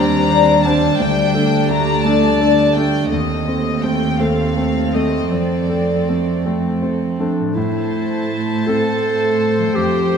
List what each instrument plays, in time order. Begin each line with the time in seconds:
Already playing: cello section D#2, grand piano D#2 G3 D4 C5, harp D#3 C4 D4 G4 C5 D5, viola section G3 C4, violin section D4 D5 A#5
0.30 grand piano D4 C5, harp D5
0.63 grand piano G3 D4 C5, harp G4, violin section A5
0.98 grand piano D2, cello section D2, harp D3, viola section A3, violin section D5 G5
1.34 grand piano D4 A4, harp D4
1.69 grand piano A3 D4 G4, harp A3, violin section A#5
2.04 grand piano A3 D4 A4, harp D4, violin section A5
2.40 grand piano D4 A4, harp D5
2.75 grand piano A3 D4 A4, harp A4, violin section G5
3.10 cello section D#2, grand piano D#2, harp D#3, viola section A3, violin section C4 A4 D#5
3.48 grand piano C4 A4, harp C4
3.82 grand piano A3 C4 A4, harp A4, violin section G5
4.19 grand piano A3 C4 A4, harp C4, violin section F5
4.57 grand piano C4 A4, harp C5
4.94 grand piano A3 C4 A4, harp A4, violin section D#5
5.31 grand piano F2, cello section F2, harp F3, viola section A3, violin section D5
5.70 grand piano C4 A4, harp C4
6.08 grand piano A3 C4 A4, harp A4
6.45 grand piano A3 C4 A4, harp C4
6.82 grand piano C4 A4, harp C5
7.18 grand piano A3 C4 A4, clarinet D4, harp A4
7.39 harp A2
7.44 harp A3
7.48 harp C4
7.53 clarinet E4, harp A4
7.57 cello section A2, grand piano A2, viola section A3, violin section C5 A5
8.67 grand piano C4 A4, clarinet A4
9.58 harp F3
9.63 harp A3
9.67 harp C4
9.72 harp G4, clarinet G4, violin section G5
9.77 grand piano F2, cello section F2